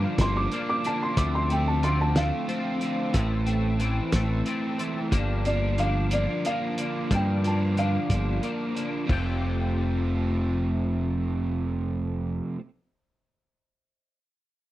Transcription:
Already playing: G2 D3 F3 A#3 D4
0.18 G1 F3 A#3 D4 C6, kick, snare, closed hi-hat
0.37 D6
0.52 F3 A#3 D4, closed hi-hat
0.69 D6
0.84 D3 A#3 D4 A5, closed hi-hat
1.03 C6
1.17 D2 D3 F3 A3 C4 D6, kick, closed hi-hat
1.35 C6
1.49 A3 C4 G5, closed hi-hat
1.68 A5
1.82 D3 F3 A3 C4 C6, closed hi-hat
2.01 A5
2.15 A3 C4 F5, snare, closed hi-hat
2.47 F3 A3 C4, closed hi-hat
2.80 D3 A3 C4, closed hi-hat
3.13 A1 A2 E3 A3 C4, kick, closed hi-hat
3.46 A3 C4, closed hi-hat
3.79 E3 A3 C4, closed hi-hat
4.12 A1 A3 C4, kick, snare, closed hi-hat
4.46 E3 A3 C4, closed hi-hat
4.78 E3 A3 C4, closed hi-hat
5.11 G1 G2 F3 A#3 D4, kick, closed hi-hat
5.45 F3 A#3 D4 D5, closed hi-hat
5.78 D3 F3 A#3 D4 F5, closed hi-hat
6.10 F3 A#3 D4 D5, closed hi-hat
6.45 F3 A#3 D4 F5, closed hi-hat
6.77 D3 A#3 D4, closed hi-hat
7.11 G2 F3 A#3 D4 G5, kick, closed hi-hat
7.44 F3 A#3 D4 A5, closed hi-hat
7.76 D3 F3 A#3 D4 F5, closed hi-hat
8.10 G1 F3 A#3 D4, kick, closed hi-hat
8.42 F3 A#3 D4, closed hi-hat
8.74 D3 A#3 D4, closed hi-hat
9.06 F1 F2 C3 F3 A3, kick, floor tom, crash
9.10 A3 C4 G4

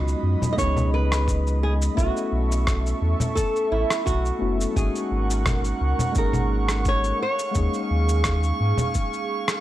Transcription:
Already playing: C#2 F#3 G#3 B3 C#4 D#4 F4 F#4 D#5 B5
0.08 cabasa
0.23 F#2
0.42 low conga, cabasa
0.53 G#3 B3 D#5
0.58 C#2 C#4 D#4 G#4 C#5, kick, cabasa
0.77 low conga, cabasa
0.94 B4
1.12 cross-stick, cabasa
1.28 kick, cabasa
1.47 cabasa
1.63 G#4
1.82 cabasa
1.93 A3 B3 C#4 F#4
1.98 B1 E4 A4 E5 C#6, kick, cabasa
2.17 cabasa
2.32 B1
2.52 cabasa
2.67 kick, cross-stick, cabasa
2.86 cabasa
3.02 E2
3.20 low conga, cabasa
3.35 A4, kick, cabasa
3.56 cabasa
3.72 A1 E4
3.90 cross-stick, cabasa
4.06 B1 F#4, kick, cabasa
4.25 cabasa
4.39 F#1 A3 B3 C#4 E4 F#4
4.61 cabasa
4.72 G#3 A#3 C#4 A#4 F#5 C#6
4.76 G#1 D#4 F#4 G#4 C#6, kick, cabasa
4.96 cabasa
5.11 G#1
5.30 cabasa
5.46 kick, cross-stick, low conga, cabasa
5.64 cabasa
5.81 C#2
5.99 low conga, cabasa
6.12 G#3 A#3 C#4, cabasa
6.16 G#1 D#4 G#4 A#4, kick
6.33 low conga, cabasa
6.69 cross-stick, cabasa
6.85 C#5, kick, cabasa
7.04 cabasa
7.21 G#4 C#5 F5
7.39 cabasa
7.51 G#3 A#3 C#4, cabasa
7.55 D#2 D#4 G#4, kick
7.74 cabasa
7.91 D#2
8.09 cabasa
8.24 kick, cross-stick, cabasa
8.43 cabasa
8.60 G#2
8.78 low conga, cabasa
8.94 kick, cabasa
9.13 cabasa
9.48 cross-stick, cabasa

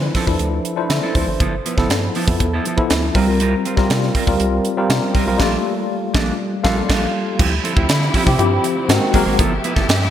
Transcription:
Already playing: F3 D4 E4 B4 C5
0.03 muted clean electric guitar stroke
0.15 F3 C4 E4 A4, kick, snare, open hi-hat
0.26 E2 F3 D4 E4 A4, muted clean electric guitar stroke, kick
0.39 D2, muted clean electric guitar stroke, closed hi-hat
0.53 muted clean electric guitar stroke
0.65 closed hi-hat
0.76 F3 D4 E4 C5, muted clean electric guitar stroke
0.89 D3 C5 E5, muted clean electric guitar stroke, snare, closed hi-hat
1.03 F3 C4 E4 A4
1.15 D2 F3 C4 E4 A4 C5, kick, open hi-hat
1.27 G#1, muted clean electric guitar stroke
1.40 G1 F3 B3 E4 A4, kick, closed hi-hat
1.65 F3 B3 E4 B4, closed hi-hat
1.77 G1 F3 B3 E4 A4, kick, snare
1.90 G2, snare, closed hi-hat
2.03 muted clean electric guitar stroke
2.15 F3 B3 E4 A4, open hi-hat
2.27 F2 F3 B3 E4 A4, muted clean electric guitar stroke, kick
2.40 E2, muted clean electric guitar stroke, kick, closed hi-hat
2.54 F3 B3 E4 A4
2.65 F3 B3 E4 A4, closed hi-hat
2.77 F3 B3 E4 A4, kick
2.90 D2, muted clean electric guitar stroke, snare, closed hi-hat
3.04 muted clean electric guitar stroke
3.14 C2 G3 C4 F4 A#4, kick, open hi-hat
3.28 G3 C4 F4 A#4
3.40 G3 C4 F4 A#4, closed hi-hat
3.65 G3 C4 F4 C5, closed hi-hat
3.77 C2 G3 C4 F4 A#4, kick, snare
3.90 C3, snare, closed hi-hat
4.03 muted clean electric guitar stroke, snare
4.15 G3 C4 F4 A#4, kick, open hi-hat
4.27 D2 G3 C4 F4 A#4, muted clean electric guitar stroke, kick
4.40 C2, muted clean electric guitar stroke, closed hi-hat
4.53 muted clean electric guitar stroke
4.65 closed hi-hat
4.77 G3 C4 F4 A#4, muted clean electric guitar stroke
4.89 C3, muted clean electric guitar stroke, snare, closed hi-hat
5.02 muted clean electric guitar stroke
5.14 C2 G3 C4 F4 A#4, kick, open hi-hat
5.27 B1 G3 C4 F4 A#4
5.39 A#1 F3 G3 A3 A#3 D4 F4 A4, kick, snare, crash
5.45 A#3
6.14 A#1 F3 A#3 D4 A4, kick, snare
6.63 A#1 F3 G3 A#3 D4 F4 A4 F5, kick, snare
6.89 A#1 F3 A#3 D4 A4, kick, snare, crash
7.38 D2 D3 F3 G3 C4 E4 G4, kick, crash
7.63 F3 C4 E4 A4, closed hi-hat
7.76 D2 F3 C4 E4 G4, kick
7.89 D3, snare, closed hi-hat
8.01 muted clean electric guitar stroke, snare
8.14 F3 C4 E4 G4, kick, open hi-hat
8.26 C3 F3 C4 E4 G4, muted clean electric guitar stroke, kick
8.38 G2 F3 C4 E4 G4, muted clean electric guitar stroke, closed hi-hat
8.51 muted clean electric guitar stroke
8.64 closed hi-hat
8.76 muted clean electric guitar stroke
8.88 G#2 D#3 G#3 A#3 C4 F#4 A#4, muted clean electric guitar stroke, snare, closed hi-hat
9.01 muted clean electric guitar stroke
9.13 G#1 F#3 G#3 A#3 C4 F#4 G#4 A#4, kick, open hi-hat
9.26 G#1 F#3 A#3 C4 G#4
9.39 G1 F3 A3 B3 E4 G4 A4 E5, kick, closed hi-hat
9.64 F3 B3 E4 B4, closed hi-hat
9.76 G1 F3 B3 E4 A4, kick, snare
9.89 G2, snare, closed hi-hat
10.02 muted clean electric guitar stroke, snare

